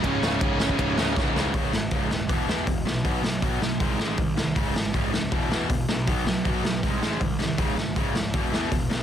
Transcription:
<<
  \new Staff \with { instrumentName = "Lead electric guitar" } { \time 4/4 \key cis \minor \tempo 4 = 159 <cis' cis''>2. r4 | r1 | r1 | r1 |
r1 | r1 | }
  \new Staff \with { instrumentName = "Distorted electric guitar" } { \clef bass \time 4/4 \key cis \minor <cis, gis, cis>8 <cis, gis, cis>8 <cis, gis, cis>8 <cis, gis, cis>8 <cis, gis, cis>8 <cis, gis, cis>8 <cis, gis, cis>8 <cis, gis, cis>8 | <cis, gis, cis>8 <cis, gis,>8 <cis, gis, cis>8 <cis, gis,>8 <e, b, e>8 <e, b, e>8 <e, b,>8 <e, b,>8 | <b, fis b>8 <b, fis>8 <b, fis b>8 <b, fis>8 <gis, dis gis>8 <gis, dis gis>8 <gis, dis>8 <gis, dis>8 | <cis, gis, cis>8 <cis, gis,>8 <cis, gis, cis>8 <cis, gis,>8 <e, b, e>8 <e, b, e>8 <e, b,>8 <e, b,>8 |
<b, fis b>8 <b, fis>8 <b, fis b>8 <b, fis>8 <gis, dis gis>8 <gis, dis gis>8 <gis, dis>8 <gis, dis>8 | <cis, gis, cis>8 <cis, gis,>8 <cis, gis, cis>8 <cis, gis,>8 <e, b, e>8 <e, b, e>8 <e, b,>8 <e, b,>8 | }
  \new Staff \with { instrumentName = "Distorted electric guitar" } { \clef bass \time 4/4 \key cis \minor <cis, gis, cis>8 <cis, gis, cis>8 <cis, gis, cis>8 <cis, gis, cis>8 <cis, gis, cis>8 <cis, gis, cis>8 <cis, gis, cis>8 <cis, gis, cis>8 | <cis, gis, cis>8 <cis, gis,>8 <cis, gis, cis>8 <cis, gis,>8 <e, b, e>8 <e, b, e>8 <e, b,>8 <e, b,>8 | <b, fis b>8 <b, fis>8 <b, fis b>8 <b, fis>8 <gis, dis gis>8 <gis, dis gis>8 <gis, dis>8 <gis, dis>8 | <cis, gis, cis>8 <cis, gis,>8 <cis, gis, cis>8 <cis, gis,>8 <e, b, e>8 <e, b, e>8 <e, b,>8 <e, b,>8 |
<b, fis b>8 <b, fis>8 <b, fis b>8 <b, fis>8 <gis, dis gis>8 <gis, dis gis>8 <gis, dis>8 <gis, dis>8 | <cis, gis, cis>8 <cis, gis,>8 <cis, gis, cis>8 <cis, gis,>8 <e, b, e>8 <e, b, e>8 <e, b,>8 <e, b,>8 | }
  \new Staff \with { instrumentName = "Overdriven electric guitar" } { \clef bass \time 4/4 \key cis \minor <cis, gis, cis>8 <cis, gis, cis>8 <cis, gis, cis>8 <cis, gis, cis>8 <cis, gis, cis>8 <cis, gis, cis>8 <cis, gis, cis>8 <cis, gis, cis>8 | r1 | r1 | r1 |
r1 | r1 | }
  \new Staff \with { instrumentName = "Picked electric bass" } { \clef bass \time 4/4 \key cis \minor cis,,8 cis,,8 cis,,4 cis,,8 cis,,8 cis,,8 cis,8 | cis,,8 gis,,8 cis,,8 dis,,8 e,,8 e,8 e,,8 b,,8 | b,,8 b,,8 b,,8 b,,8 bis,,8 a,,8 bis,,8 bis,,8 | cis,,8 gis,,8 cis,,8 cis,,8 e,,8 e,8 e,,8 b,,8 |
b,,8 b,,8 b,,8 b,,8 bis,,8 a,,8 bis,,8 bis,,8 | cis,,8 gis,,8 cis,,8 cis,,8 e,,8 e,8 e,,8 b,,8 | }
  \new DrumStaff \with { instrumentName = "Drums" } \drummode { \time 4/4 <bd cymr>8 sn8 <bd cymr>8 sn16 bd16 <bd cymr>8 sn8 <bd sn>8 sn8 | <hho bd>8 sn8 <hho bd>8 sn8 <hho bd>8 sn8 <hho bd>8 sn8 | <hho bd>8 sn8 <hho bd>8 sn8 <hho bd>8 sn8 <hho bd>8 sn8 | <hho bd>8 sn8 <hho bd>8 sn8 <hho bd>8 sn8 <hho bd>8 sn8 |
<hho bd>8 sn8 <hho bd>8 sn8 <hho bd>8 sn8 <hho bd>8 sn8 | <hho bd>8 sn8 <hho bd>8 sn8 <hho bd>8 sn8 <hho bd>8 sn8 | }
>>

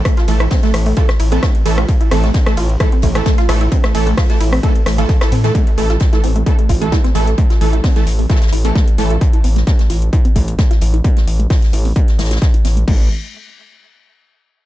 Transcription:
<<
  \new Staff \with { instrumentName = "Synth arpeggio sound" } { \time 4/4 \key a \minor \tempo 4 = 131 a16 f'16 r16 e'16 c'16 a16 r16 a16 f'16 r16 e'16 c'16 a16 r16 a16 f'16 | r16 e'16 c'16 a16 r16 a16 f'16 r16 e'16 c'16 a16 r16 a16 f'16 r16 e'16 | c'16 a16 r16 a16 f'16 r16 e'16 c'16 a16 r16 a16 f'16 r16 e'16 c'16 a16 | a16 r16 a16 f'16 r16 e'16 c'16 a16 r16 a16 f'16 r16 e'16 c'16 a16 r16 |
a16 f'16 r16 e'16 c'16 a16 r16 a16 f'16 r16 e'16 c'16 a16 r16 a16 f'16 | r16 e'16 c'16 a16 r16 a16 f'16 r16 e'16 c'16 a16 r16 a16 f'16 r16 e'16 | c'16 a16 r16 a16 f'16 r16 e'16 c'16 a16 r16 a16 f'16 r16 e'16 c'16 a16 | a8 r2. r8 | }
  \new Staff \with { instrumentName = "Synth stab" } { \time 4/4 \key a \minor r8 <e a a'>16 r8 <e a a'>16 r8 <e a a'>16 r8 <e a a'>16 r8 <e a a'>16 r16 | r8 <e a a'>16 r8 <e a a'>16 r8 <e a a'>16 r8 <e a a'>16 r8 <e a a'>16 r16 | r8 <e a a'>16 r8 <e a a'>16 r8 <e a a'>16 r8 <e a a'>16 r16 <e a a'>16 r16 <e a a'>16 | r8 <e a a'>16 r8 <e a a'>16 r8 <e a a'>16 r8 <e a a'>16 r8 <e a a'>16 r16 |
r8 <e a a'>16 r8 <e a a'>16 r8 <e a a'>16 r8 <e a a'>16 r8 <e a a'>16 r16 | r1 | r1 | r1 | }
  \new Staff \with { instrumentName = "Analog synth bass" } { \clef bass \time 4/4 \key a \minor r8 a,,8 r8 a,,8 r8 a,,8 r8 a,,8 | r8 a,,8 r8 a,,8 r8 a,,8 r8 a,,8 | r8 a,,8 r8 a,,8 r8 a,,8 r8 a,8 | r8 a,,8 r8 a,,8 r8 a,,8 r8 a,,8 |
r8 a,,8 r8 a,,8 r8 a,,8 r8 a,,8 | r8 a,,8 r8 a,,8 r8 a,,8 r8 a,,8 | r8 a,,8 r8 a,,8 r8 a,,8 r8 a,,8 | a,,8 r2. r8 | }
  \new DrumStaff \with { instrumentName = "Drums" } \drummode { \time 4/4 <hh bd cymr ss>16 <hh sn>16 <hh hho cymr>16 <hh ss>16 <hh hho bd cymr sn>16 <hh sn>16 <hh hho cymr ss sn>16 hho16 <hh bd cymr>16 <hh ss sn>16 <hh hho cymr>16 hh16 <hh bd cymr ss sn>16 hh16 <hh hho cymr sn>16 <hh ss>16 | <hh bd cymr>16 hh16 <hh hho cymr ss>16 <hh sn>16 <hh bd cymr sn>16 <hh ss sn>16 <hh hho cymr sn>16 hh16 <hh bd cymr ss>16 hh16 <hh hho bd cymr>16 <hh ss>16 <hh bd cymr sn>16 <hh sn>16 <hh hho cymr ss>16 hh16 | <hh bd cymr>16 <hh ss sn>16 <hh hho cymr>16 hh16 <hh hho bd cymr ss sn>16 <hh sn>16 <hh hho cymr sn>16 <hho ss>16 <hh bd cymr>16 hh16 <hh hho cymr ss sn>16 hh16 <hh bd cymr sn>16 <hh ss sn>16 <hho cymr>16 <hh sn>16 | <hh bd>16 hh16 <hh hho>16 <hh sn>16 <hh bd sn>16 <hh sn>16 <hh hho>16 hh16 <hh bd>16 hh16 <hh hho bd>16 hh16 <hh bd sn>16 <hh sn>16 <hh hho>16 hh16 |
<hh bd>16 <hh sn>16 <hh hho>16 hh16 <hh hho bd sn>16 <hh sn>16 <hh hho sn>16 hho16 <hh bd sn>32 <hh sn>32 <hh sn>32 <hh sn>32 <hh hho>16 hh16 <hh bd sn>16 hh16 <hh hho sn>16 hh16 | <hh bd>16 hh16 <hh hho>16 <hh sn>16 <hh bd sn>16 <hh sn>16 <hh hho sn>16 hh16 <hh bd>16 hh16 <hh hho bd>16 hh16 <hh bd sn>16 <hh sn>16 <hh hho>16 hh16 | <hh bd>16 <hh sn>16 <hh hho>16 hh16 <hh hho bd sn>16 <hh sn>16 <hh hho>16 hho16 <hh bd>16 <hh sn>16 <hh hho sn>32 <hh sn>32 <hh sn>32 <hh sn>32 <hh bd sn>16 hh16 <hh hho sn>16 hh16 | <cymc bd>4 r4 r4 r4 | }
>>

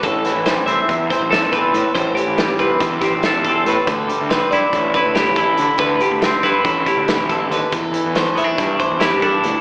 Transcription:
<<
  \new Staff \with { instrumentName = "Clean electric guitar" } { \time 9/8 \key d \mixolydian \tempo 4. = 94 a'4 c''8 e''4 c''8 a'8 b'4 | c''8 g'4 b'8 a'8 g'4 a'8 b'8 | a'4 b'8 d''4 b'8 g'8 a'4 | b'8 g'4 b'8 a'8 g'4 a'8 b'8 |
a'4 c''8 e''4 c''8 g'8 a'4 | }
  \new Staff \with { instrumentName = "Clean electric guitar" } { \clef bass \time 9/8 \key d \mixolydian << { r4 g8 c'4 c'8 a'8 c'4 | r4 g8 c'4 c'8 a'8 c'4 | r4 c'8 e'4 e'8 e'8 e'4~ | e'4 c'8 e'4 e'2~ |
e'4 a8 b16 d'8. d'8 e'8 d'4 | } \\ { a,8 e4. e,2 a,8 | a,8 e4. e,2 a,8 | d8 g4. a,2 d8 | d8 g4. a,4 b,8 c8 d8 |
e,8 e4. e,2 e,8 | } >> }
  \new Staff \with { instrumentName = "Picked electric bass" } { \clef bass \time 9/8 \key d \mixolydian a,,8 r16 a,,8 r16 c,16 r16 e,8 r16 a,,8 e,8. a,16 r16 | a,,8 r16 a,,8 r16 c,16 r16 e,8 r16 a,,8 e,8. a,16 r16 | d,8 r16 d,8 r16 g,16 r16 a,,8 r16 d,8 a,,8. d16 r16 | d,8 r16 d,8 r16 g,16 r16 a,,8 r16 d,8 a,,8. ees,16 r16 |
e,8 r16 e,8 r16 e,16 r16 g,8 r16 e,8 g,8. d,16 r16 | }
  \new DrumStaff \with { instrumentName = "Drums" } \drummode { \time 9/8 <hh bd>8 <hh sn>8 <hh sn>8 hh8 <hh bd>8 <hh bd sn>8 <hh sn>8 <hh bd>8 hh8 | <hh bd>8 hh8 <hh sn>8 <hh bd>8 <hh bd sn>8 <hh bd sn>8 <hh sn>8 <hh bd>8 hh8 | <hh bd>8 hh8 <hh sn>8 hh8 <hh bd>8 <hh bd>8 <hh sn>8 <hh bd>8 hh8 | <hh bd>8 hh8 <hh sn>8 <hh bd sn>8 <hh bd>8 <hh bd>8 <hh sn>8 <hh bd>8 hh8 |
<hh bd>8 hh8 <hh sn>8 hh8 <hh bd>8 <hh bd>8 <hh sn>8 <hh bd>8 hh8 | }
>>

